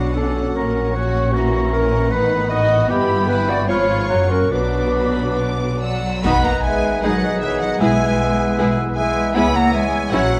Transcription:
Already playing: double bass section B1, cello section B2, bassoon F#3, violin section B3 F#5, viola section D4 F#4, clarinet F#4, french horn section F#4, flute D6
0.15 violin section C#4, clarinet A4, french horn section A4
0.55 double bass section A#1, cello section A#2, viola section C#4, violin section C#4, french horn section A#4, clarinet A#4, oboe A#5, flute C#6
0.95 violin section F#4, french horn section C#5, clarinet C#5, oboe F#5
1.33 bassoon E3, violin section A#3 F#5, viola section E4, french horn section F#4, clarinet F#4, oboe A#5
1.72 violin section C#4, clarinet A#4, french horn section A#4
2.11 double bass section A1, cello section A2, bassoon D#3, viola section B3 D#4, violin section D#4, clarinet B4, french horn section B4, oboe B5, flute B5
2.50 violin section F#4, clarinet D#5, french horn section D#5, oboe F#5
2.89 double bass section G1, cello section G2, bassoon E3, violin section B3 B5, viola section E4, clarinet G4, french horn section G4, oboe G5, flute B5
3.29 bassoon E3, violin section E4, french horn section B4, clarinet B4, flute B5
3.49 violin section F#4, clarinet D5, french horn section D5
3.68 double bass section G#1, cello section G#2, bassoon F3, viola section F4, violin section F4 C#6, clarinet C#5, french horn section C#5, oboe F5, flute B5
4.09 double bass section F#1, cello section F#2, bassoon F#3, viola section A#3 F#4, oboe F#5, flute A#5
4.30 violin section C#4, clarinet A#4, french horn section A#4, flute C#6
4.51 double bass section B1, cello section B2, bassoon F#3, viola section B3, violin section D4 D6, clarinet B4, french horn section B4, oboe D5, flute D6
4.96 violin section B5
5.39 violin section D6
5.81 cello section F#3, french horn section F#3, flute D5, violin section F#5 E6
6.23 double bass section B1, viola section D#3 D#4, trombone section D#3 B3, cello section B3, french horn section B3, bassoon D#4, violin section F#4 B4 B5, clarinet B4, trumpet section B4, flute F#5, oboe F#5, concert bass drum, crash
6.43 cello section A#3, french horn section A#3, flute F#5, violin section A#5
6.64 cello section G#3, french horn section G#3, flute E5, violin section G#5
7.01 double bass section B1, cello section F#3, viola section G#3 D#4, bassoon D#4, violin section G#4 B4 F#5, trumpet section G#4, clarinet B4, flute D#5, oboe G#5
7.06 french horn section F#3
7.41 cello section E3, french horn section E3, flute C#5, violin section E5, oboe F#5
7.61 cello section F#3, french horn section F#3, flute D#5, violin section F#5
7.80 double bass section B1, trombone section E3, viola section G#3 E4, cello section G#3, french horn section G#3, bassoon B3, trumpet section E4, violin section G#4 B4 G#5, clarinet B4, flute E5, oboe E5
8.58 double bass section B1, viola section G#3 E4, violin section G#4 B4
8.96 cello section G#3, french horn section G#3, bassoon B3, clarinet B4, flute E5, oboe E5, violin section G#5
9.33 double bass section C#2, viola section G#3 E4, bassoon B3, cello section B3, trombone section B3, french horn section B3, violin section E4 B4 B5, clarinet C#5, oboe E5, flute G#5
9.55 cello section A#3, french horn section A#3, flute F#5, violin section A#5
9.72 cello section G#3, french horn section G#3, bassoon B3, clarinet C#5, flute E5, oboe E5, violin section G#5
10.11 double bass section A#1, bassoon F#3, cello section F#3, french horn section F#3, trombone section C#4, viola section C#4 E4, trumpet section F#4, violin section F#4 F#5, flute C#5, clarinet C#5, oboe E5

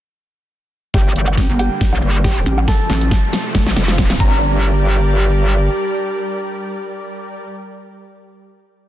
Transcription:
0.94 wobble bass G1, supersaw synth D3 G3 A#3, felt piano G4 G5, kick, snare, closed hi-hat, riser
1.16 wobble bass G1, closed hi-hat
1.28 closed hi-hat, low woodblock
1.37 wobble bass A1, kick, snare, closed hi-hat
1.49 wobble bass G1
1.59 felt piano G4 G5, open hi-hat, low woodblock
1.81 kick, snare, closed hi-hat
1.93 wobble bass A#1, low woodblock
2.03 wobble bass G1
2.24 felt piano G4 G5, kick, snare, closed hi-hat
2.46 wobble bass A1, brass ensemble G3 D4 G4, closed hi-hat
2.58 low woodblock
2.68 supersaw synth C3 F3 A3, felt piano A4 A5, kick, snare, closed hi-hat
2.90 wobble bass A1, snare, closed hi-hat
3.01 closed hi-hat
3.11 kick, snare, closed hi-hat
3.33 snare, open hi-hat
3.55 wobble bass F1, kick, snare, closed hi-hat
3.66 wobble bass A1, snare
3.76 wobble bass F1, snare
3.88 brass ensemble F3 C4 F4, snare
3.98 kick, snare, closed hi-hat
4.10 snare
4.20 wobble bass G1, supersaw synth G3 G4 A#4 D5, brass ensemble G3 D4 G4, felt piano A#5, kick

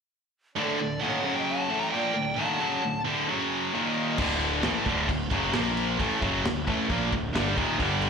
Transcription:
0.56 distorted electric guitar D2 A2 D3, string section F#3 D4 A4, lead electric guitar D5
0.60 shakuhachi A4 A#4
0.79 distorted electric guitar D2 A2
1.01 distorted electric guitar D#2 A#2 D#3, lead electric guitar F#5
1.06 shakuhachi C#5
1.24 distorted electric guitar F#2 C#3 F#3, string section F#3 C#4 C#5
1.35 shakuhachi D#5, lead electric guitar G5
1.48 shakuhachi F#5, lead electric guitar A5
1.70 distorted electric guitar A2 E3 A3, string section D4 A4
1.80 shakuhachi G5, lead electric guitar A#5
1.91 distorted electric guitar A#2 F3 A#3, shakuhachi D5, lead electric guitar G5
2.15 distorted electric guitar D2 A2
2.34 lead electric guitar A5
2.38 distorted electric guitar D#2 A#2 D#3, shakuhachi F#5
2.60 distorted electric guitar F#2 C#3 F#3
2.83 distorted electric guitar D2 A2
3.05 distorted electric guitar D2 A2 D3
3.29 distorted electric guitar F#2 C#3 F#3, string section C#4 C#5
3.74 distorted electric guitar D#2 A#2 D#3, string section A#3 D#4 D#5
4.18 picked electric bass D1, distorted electric guitar D2 A2 D3, kick, crash
4.41 crash
4.63 picked electric bass A1, distorted electric guitar A2 E3 A3, snare, crash
4.85 picked electric bass D1, distorted electric guitar D2 A2 D3, kick, crash
5.09 picked electric bass D1, distorted electric guitar D2 A2, kick, crash
5.31 picked electric bass F#1, distorted electric guitar F#2 C#3 F#3, kick, crash
5.53 picked electric bass A#1, distorted electric guitar A#2 F3 A#3, snare, crash
5.77 crash
5.99 picked electric bass A1, distorted electric guitar A2 E3 A3, kick, crash
6.21 picked electric bass F#1, distorted electric guitar F#2 C#3 F#3, kick, crash
6.44 picked electric bass D1, distorted electric guitar D2 A2, snare, crash
6.67 picked electric bass A1, distorted electric guitar A2 E3 A3, kick, crash
6.88 picked electric bass A#1, distorted electric guitar A#2 F3 A#3, kick, crash
7.12 picked electric bass D1, distorted electric guitar D2 A2, kick, crash
7.34 picked electric bass G1, distorted electric guitar G2 D3 G3, snare, crash
7.57 picked electric bass D#1, distorted electric guitar D#2 A#2 D#3, kick, crash
7.79 picked electric bass G1, distorted electric guitar G2 D3 G3, kick, crash
8.02 crash

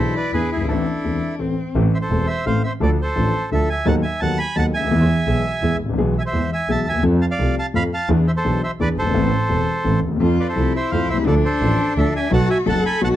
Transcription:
Already playing: grand piano B1 E3, cello E4, bandoneon A4 C5
0.00 double bass B1, grand piano B2 B3 D4 G#4
0.16 bandoneon B4 D5
0.33 double bass E2, grand piano E2 E3 B3 D4 G#4, bandoneon G#4 B4
0.51 bandoneon E4 G#4
0.56 grand piano F#1
0.61 grand piano G1
0.65 grand piano G#1 E3, bandoneon E4 A4
0.69 grand piano A1 A2 A3 C4 A4, cello D4
1.04 grand piano E1 E2 E3 A3 C4 A4
1.39 grand piano A1 A2 E3 A3 C4 A4, cello C4
1.75 double bass A1, grand piano A1 A2 E3 A3 C4 A4
1.94 bandoneon C5 E5
2.01 bandoneon A4 C5
2.10 double bass E1, grand piano E1 E2 E3 A3 C4 A4
2.27 bandoneon C5 E5
2.46 grand piano A1 A2 E3 A3 C4 A4, double bass A1, bandoneon C5 F5
2.64 bandoneon C5 E5
2.80 grand piano D2 D3 F3 A3 D4 A4, double bass D2, bandoneon A4 D5
3.02 bandoneon A4 C5
3.16 grand piano A1 A2 F3 A3 D4 A4, double bass A1
3.51 grand piano D2 D3 F3 A3 D4 A4, double bass D2, bandoneon A4 E5
3.70 bandoneon E5 G#5
3.85 grand piano D#2 D#3 F#3 B3 D#4 A4, double bass D#2, bandoneon F#5 A5
4.02 bandoneon E5 G#5
4.20 double bass D#2, grand piano D#2 D#3 F#3 B3 D#4 A4, bandoneon F#5 A5
4.38 bandoneon G#5 B5
4.56 grand piano D#2 D#3 F#3 B3 D#4 A4, double bass D#2, bandoneon F#5 A5
4.74 double bass D2, bandoneon E5 G#5
4.79 grand piano C#2
4.83 grand piano D2
4.88 grand piano D#2 E2 E3 G#3 B3 G#4, double bass E2
5.27 double bass B1, grand piano B1 B2 E3 G#3 B3 G#4
5.62 double bass E2, grand piano E2 E3 G#3 B3 G#4
5.80 double bass A1
5.85 grand piano G#1 A1
5.94 grand piano A#1, double bass B1
5.98 grand piano B1 B2 E3 G#3 B3 G#4
6.19 bandoneon E5 G#5
6.26 bandoneon C5 E5
6.33 grand piano E2 E3 G#3 B3 G#4, double bass E2
6.53 bandoneon E5 G#5
6.68 double bass B1, grand piano B1 B2 E3 G#3 B3 G#4, bandoneon E5 A5
6.87 grand piano D2, double bass D#2, bandoneon E5 G#5
6.95 grand piano D#2 E2
7.03 double bass F2, grand piano F2 F3 A3 C4 A4
7.22 bandoneon F5 A5
7.31 bandoneon D5 F5
7.39 double bass C2, grand piano C2 C3 F3 A3 C4 A4
7.59 bandoneon F5 A5
7.74 grand piano F2 F3 A3 C4 A4, double bass F2, bandoneon F5 B5
7.94 bandoneon F5 A5
8.09 grand piano E2 E3 B3 D4 G#4, double bass E2
8.27 bandoneon C5 E5
8.37 bandoneon A4 C5
8.45 grand piano B1 B2 E3 B3 D4 G#4, double bass B1
8.64 bandoneon C5 E5
8.80 double bass E2, grand piano E2 E3 B3 D4 G#4, bandoneon B4 D5
8.98 double bass G1, bandoneon A4 C5
9.02 grand piano F#1 G1
9.11 grand piano G#1 A1 A2 E3 B3 C4 A4
9.16 double bass A1
9.49 grand piano E1 E2 E3 B3 C4 A4, double bass E1
9.84 grand piano A1 A2 E3 B3 C4 A4, double bass A1
10.03 double bass D#2
10.08 grand piano D2 D#2
10.16 grand piano E2
10.20 grand piano F2 F3 A3 C4 A4, double bass F2, cello F4
10.40 bandoneon B4 D5
10.49 bandoneon A4 C5
10.56 grand piano C2 C3 F3 A3 C4 A4, double bass C2, cello E4
10.76 bandoneon C5 E5
10.91 double bass F2, grand piano F2 F3 A3 C4 A4, bandoneon C5 F5
11.10 grand piano B1, double bass C2, bandoneon C5 E5
11.17 grand piano C2
11.23 grand piano C#2 D2 D3 F3 D4, cello D4, bandoneon D5
11.27 double bass D2, grand piano E4 A4, bandoneon A4
11.45 bandoneon A4 C5
11.61 double bass A1, grand piano A1 A2 F3 D4 E4 A4
11.97 double bass D2, grand piano D2 D3 F3 D4 E4 A4, bandoneon A4 E5
12.16 bandoneon E5 G#5
12.31 grand piano B1 B2 F#3 B3 D#4 A4, double bass B1, cello F#4, bandoneon F#5 A5
12.50 bandoneon E5 G#5
12.66 grand piano F#1 F#2 F#3 B3 D#4 A4, double bass F#1, cello A4, bandoneon F#5 A5
12.86 bandoneon G#5 B5
13.01 grand piano B1 B2 F#3 B3 D#4 A4, double bass B1, cello F#4, bandoneon F#5 A5

